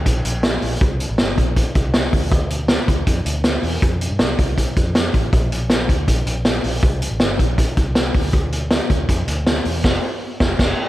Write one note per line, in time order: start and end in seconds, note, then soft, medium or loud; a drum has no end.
0.06 0.22 A#1 medium
0.06 kick medium
0.06 closed hi-hat medium
0.25 0.57 A#1 medium
0.25 closed hi-hat medium
0.43 snare loud
0.43 closed hi-hat medium
0.62 0.78 A#1 medium
0.62 open hi-hat medium
0.81 1.05 C2 loud
0.81 kick loud
0.81 closed hi-hat medium
1.00 closed hi-hat medium
1.09 1.17 A1 medium
1.18 snare loud
1.18 closed hi-hat medium
1.38 1.62 A#1 medium
1.38 kick medium
1.38 closed hi-hat medium
1.56 kick medium
1.56 closed hi-hat medium
1.75 2.07 C2 loud
1.75 kick medium
1.75 closed hi-hat medium
1.94 snare loud
1.94 closed hi-hat medium
2.13 2.77 D2 loud
2.13 kick medium
2.13 open hi-hat medium
2.31 kick loud
2.31 closed hi-hat medium
2.50 closed hi-hat medium
2.68 snare loud
2.68 closed hi-hat medium
2.88 3.04 D2 medium
2.88 kick medium
2.88 closed hi-hat medium
3.07 3.23 F2 loud
3.07 kick medium
3.07 closed hi-hat loud
3.25 3.57 D2 loud
3.25 closed hi-hat medium
3.44 snare loud
3.44 closed hi-hat medium
3.63 3.79 E2 medium
3.63 open hi-hat medium
3.82 4.06 F2 loud
3.82 kick loud
3.82 closed hi-hat medium
4.01 closed hi-hat medium
4.10 4.21 G2 medium
4.19 4.36 C2 medium
4.19 snare loud
4.19 closed hi-hat medium
4.39 4.63 C2 medium
4.39 kick medium
4.39 closed hi-hat medium
4.58 kick medium
4.58 closed hi-hat medium
4.76 5.08 F2 loud
4.76 kick medium
4.76 closed hi-hat medium
4.95 snare loud
4.95 closed hi-hat medium
5.14 5.30 A1 medium
5.14 kick medium
5.14 closed hi-hat medium
5.33 5.86 A#1 loud
5.33 kick loud
5.33 closed hi-hat medium
5.52 closed hi-hat medium
5.70 snare loud
5.70 closed hi-hat medium
5.89 6.05 D2 medium
5.89 kick medium
5.89 closed hi-hat medium
6.08 6.24 A#1 medium
6.08 kick medium
6.08 closed hi-hat loud
6.26 6.59 A#1 medium
6.26 closed hi-hat medium
6.45 snare loud
6.45 closed hi-hat medium
6.64 6.80 A#1 medium
6.64 open hi-hat medium
6.83 7.07 C2 loud
6.83 kick loud
6.83 closed hi-hat medium
7.02 closed hi-hat medium
7.11 7.19 A1 medium
7.20 7.37 G1 medium
7.20 snare loud
7.20 closed hi-hat medium
7.39 7.63 A#1 medium
7.39 kick medium
7.39 closed hi-hat medium
7.58 kick medium
7.58 closed hi-hat medium
7.77 8.09 C2 loud
7.77 kick medium
7.77 closed hi-hat medium
7.95 snare loud
7.95 closed hi-hat medium
8.14 8.79 D2 loud
8.14 kick medium
8.14 open hi-hat medium
8.33 kick loud
8.33 closed hi-hat medium
8.52 closed hi-hat medium
8.71 snare loud
8.71 closed hi-hat medium
8.90 9.06 D2 medium
8.90 kick medium
8.90 closed hi-hat medium
9.09 9.25 F2 loud
9.09 kick medium
9.09 closed hi-hat medium
9.27 9.59 D2 loud
9.27 closed hi-hat medium
9.47 snare loud
9.47 closed hi-hat medium
9.65 9.81 E2 medium
9.65 open hi-hat medium
9.84 9.97 F1 loud
9.84 kick loud
9.84 snare loud
9.84 crash medium
10.40 10.53 F1 loud
10.40 kick loud
10.40 snare loud
10.59 10.72 F1 loud
10.59 kick loud
10.59 snare loud
10.59 crash medium